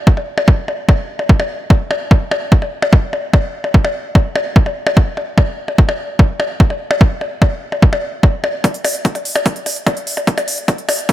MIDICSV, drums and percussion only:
0, 0, Header, 1, 3, 480
1, 0, Start_track
1, 0, Tempo, 408163
1, 562, Time_signature, 4, 2, 24, 8
1, 13088, End_track
2, 0, Start_track
2, 0, Title_t, "Percussion blips"
2, 202, Note_on_c, 9, 60, 38
2, 319, Note_off_c, 9, 60, 0
2, 442, Note_on_c, 9, 60, 75
2, 559, Note_off_c, 9, 60, 0
2, 802, Note_on_c, 9, 60, 39
2, 920, Note_off_c, 9, 60, 0
2, 1042, Note_on_c, 9, 60, 79
2, 1159, Note_off_c, 9, 60, 0
2, 1402, Note_on_c, 9, 60, 38
2, 1519, Note_off_c, 9, 60, 0
2, 1641, Note_on_c, 9, 60, 80
2, 1759, Note_off_c, 9, 60, 0
2, 2001, Note_on_c, 9, 60, 39
2, 2119, Note_off_c, 9, 60, 0
2, 2241, Note_on_c, 9, 60, 78
2, 2359, Note_off_c, 9, 60, 0
2, 2481, Note_on_c, 9, 60, 42
2, 2599, Note_off_c, 9, 60, 0
2, 2721, Note_on_c, 9, 60, 82
2, 2839, Note_off_c, 9, 60, 0
2, 3081, Note_on_c, 9, 60, 40
2, 3199, Note_off_c, 9, 60, 0
2, 3321, Note_on_c, 9, 60, 81
2, 3439, Note_off_c, 9, 60, 0
2, 3681, Note_on_c, 9, 60, 41
2, 3799, Note_off_c, 9, 60, 0
2, 3921, Note_on_c, 9, 60, 81
2, 4039, Note_off_c, 9, 60, 0
2, 4282, Note_on_c, 9, 60, 42
2, 4399, Note_off_c, 9, 60, 0
2, 4522, Note_on_c, 9, 60, 81
2, 4639, Note_off_c, 9, 60, 0
2, 4882, Note_on_c, 9, 60, 41
2, 4999, Note_off_c, 9, 60, 0
2, 5122, Note_on_c, 9, 60, 82
2, 5239, Note_off_c, 9, 60, 0
2, 5482, Note_on_c, 9, 60, 40
2, 5600, Note_off_c, 9, 60, 0
2, 5722, Note_on_c, 9, 60, 84
2, 5839, Note_off_c, 9, 60, 0
2, 6082, Note_on_c, 9, 60, 40
2, 6200, Note_off_c, 9, 60, 0
2, 6322, Note_on_c, 9, 60, 82
2, 6439, Note_off_c, 9, 60, 0
2, 6682, Note_on_c, 9, 60, 40
2, 6800, Note_off_c, 9, 60, 0
2, 6922, Note_on_c, 9, 60, 78
2, 7040, Note_off_c, 9, 60, 0
2, 7282, Note_on_c, 9, 60, 42
2, 7400, Note_off_c, 9, 60, 0
2, 7522, Note_on_c, 9, 60, 76
2, 7640, Note_off_c, 9, 60, 0
2, 7882, Note_on_c, 9, 60, 41
2, 8000, Note_off_c, 9, 60, 0
2, 8122, Note_on_c, 9, 60, 81
2, 8239, Note_off_c, 9, 60, 0
2, 8482, Note_on_c, 9, 60, 38
2, 8599, Note_off_c, 9, 60, 0
2, 8722, Note_on_c, 9, 60, 74
2, 8839, Note_off_c, 9, 60, 0
2, 9082, Note_on_c, 9, 60, 39
2, 9199, Note_off_c, 9, 60, 0
2, 9322, Note_on_c, 9, 60, 76
2, 9439, Note_off_c, 9, 60, 0
2, 9682, Note_on_c, 9, 60, 38
2, 9799, Note_off_c, 9, 60, 0
2, 9922, Note_on_c, 9, 60, 74
2, 10039, Note_off_c, 9, 60, 0
2, 10162, Note_on_c, 9, 60, 38
2, 10279, Note_off_c, 9, 60, 0
2, 10402, Note_on_c, 9, 60, 74
2, 10519, Note_off_c, 9, 60, 0
2, 10761, Note_on_c, 9, 60, 36
2, 10879, Note_off_c, 9, 60, 0
2, 11001, Note_on_c, 9, 60, 73
2, 11119, Note_off_c, 9, 60, 0
2, 11362, Note_on_c, 9, 60, 36
2, 11479, Note_off_c, 9, 60, 0
2, 11602, Note_on_c, 9, 60, 75
2, 11719, Note_off_c, 9, 60, 0
2, 11962, Note_on_c, 9, 60, 38
2, 12079, Note_off_c, 9, 60, 0
2, 12202, Note_on_c, 9, 60, 78
2, 12319, Note_off_c, 9, 60, 0
2, 12561, Note_on_c, 9, 60, 37
2, 12679, Note_off_c, 9, 60, 0
2, 12801, Note_on_c, 9, 60, 75
2, 12919, Note_off_c, 9, 60, 0
2, 13088, End_track
3, 0, Start_track
3, 0, Title_t, "Drums"
3, 82, Note_on_c, 9, 36, 127
3, 199, Note_off_c, 9, 36, 0
3, 562, Note_on_c, 9, 36, 119
3, 679, Note_off_c, 9, 36, 0
3, 1042, Note_on_c, 9, 36, 120
3, 1159, Note_off_c, 9, 36, 0
3, 1522, Note_on_c, 9, 36, 122
3, 1639, Note_off_c, 9, 36, 0
3, 2002, Note_on_c, 9, 36, 122
3, 2119, Note_off_c, 9, 36, 0
3, 2482, Note_on_c, 9, 36, 115
3, 2599, Note_off_c, 9, 36, 0
3, 2962, Note_on_c, 9, 36, 117
3, 3079, Note_off_c, 9, 36, 0
3, 3442, Note_on_c, 9, 36, 119
3, 3559, Note_off_c, 9, 36, 0
3, 3922, Note_on_c, 9, 36, 118
3, 4039, Note_off_c, 9, 36, 0
3, 4402, Note_on_c, 9, 36, 108
3, 4519, Note_off_c, 9, 36, 0
3, 4882, Note_on_c, 9, 36, 108
3, 4999, Note_off_c, 9, 36, 0
3, 5362, Note_on_c, 9, 36, 116
3, 5479, Note_off_c, 9, 36, 0
3, 5842, Note_on_c, 9, 36, 111
3, 5960, Note_off_c, 9, 36, 0
3, 6322, Note_on_c, 9, 36, 107
3, 6440, Note_off_c, 9, 36, 0
3, 6802, Note_on_c, 9, 36, 113
3, 6920, Note_off_c, 9, 36, 0
3, 7282, Note_on_c, 9, 36, 116
3, 7400, Note_off_c, 9, 36, 0
3, 7762, Note_on_c, 9, 36, 113
3, 7879, Note_off_c, 9, 36, 0
3, 8242, Note_on_c, 9, 36, 112
3, 8359, Note_off_c, 9, 36, 0
3, 8722, Note_on_c, 9, 36, 110
3, 8840, Note_off_c, 9, 36, 0
3, 9202, Note_on_c, 9, 36, 113
3, 9319, Note_off_c, 9, 36, 0
3, 9682, Note_on_c, 9, 36, 116
3, 9799, Note_off_c, 9, 36, 0
3, 10162, Note_on_c, 9, 36, 114
3, 10162, Note_on_c, 9, 42, 67
3, 10279, Note_off_c, 9, 36, 0
3, 10279, Note_off_c, 9, 42, 0
3, 10282, Note_on_c, 9, 42, 41
3, 10399, Note_off_c, 9, 42, 0
3, 10402, Note_on_c, 9, 46, 100
3, 10519, Note_off_c, 9, 46, 0
3, 10522, Note_on_c, 9, 42, 41
3, 10639, Note_off_c, 9, 42, 0
3, 10642, Note_on_c, 9, 36, 117
3, 10642, Note_on_c, 9, 42, 67
3, 10759, Note_off_c, 9, 36, 0
3, 10759, Note_off_c, 9, 42, 0
3, 10761, Note_on_c, 9, 42, 40
3, 10879, Note_off_c, 9, 42, 0
3, 10882, Note_on_c, 9, 46, 92
3, 10999, Note_off_c, 9, 46, 0
3, 11001, Note_on_c, 9, 42, 40
3, 11119, Note_off_c, 9, 42, 0
3, 11122, Note_on_c, 9, 36, 120
3, 11122, Note_on_c, 9, 42, 70
3, 11239, Note_off_c, 9, 36, 0
3, 11239, Note_off_c, 9, 42, 0
3, 11242, Note_on_c, 9, 42, 41
3, 11359, Note_off_c, 9, 42, 0
3, 11362, Note_on_c, 9, 46, 101
3, 11479, Note_off_c, 9, 46, 0
3, 11482, Note_on_c, 9, 42, 41
3, 11599, Note_off_c, 9, 42, 0
3, 11602, Note_on_c, 9, 36, 119
3, 11602, Note_on_c, 9, 42, 67
3, 11719, Note_off_c, 9, 36, 0
3, 11719, Note_off_c, 9, 42, 0
3, 11722, Note_on_c, 9, 42, 42
3, 11839, Note_off_c, 9, 42, 0
3, 11842, Note_on_c, 9, 46, 93
3, 11959, Note_off_c, 9, 46, 0
3, 11962, Note_on_c, 9, 42, 40
3, 12079, Note_off_c, 9, 42, 0
3, 12082, Note_on_c, 9, 36, 121
3, 12082, Note_on_c, 9, 42, 65
3, 12199, Note_off_c, 9, 36, 0
3, 12199, Note_off_c, 9, 42, 0
3, 12202, Note_on_c, 9, 42, 41
3, 12319, Note_off_c, 9, 42, 0
3, 12322, Note_on_c, 9, 46, 105
3, 12439, Note_off_c, 9, 46, 0
3, 12442, Note_on_c, 9, 42, 41
3, 12559, Note_off_c, 9, 42, 0
3, 12561, Note_on_c, 9, 42, 68
3, 12562, Note_on_c, 9, 36, 124
3, 12679, Note_off_c, 9, 36, 0
3, 12679, Note_off_c, 9, 42, 0
3, 12681, Note_on_c, 9, 42, 39
3, 12799, Note_off_c, 9, 42, 0
3, 12801, Note_on_c, 9, 46, 96
3, 12919, Note_off_c, 9, 46, 0
3, 12921, Note_on_c, 9, 42, 38
3, 13039, Note_off_c, 9, 42, 0
3, 13041, Note_on_c, 9, 42, 68
3, 13042, Note_on_c, 9, 36, 123
3, 13088, Note_off_c, 9, 36, 0
3, 13088, Note_off_c, 9, 42, 0
3, 13088, End_track
0, 0, End_of_file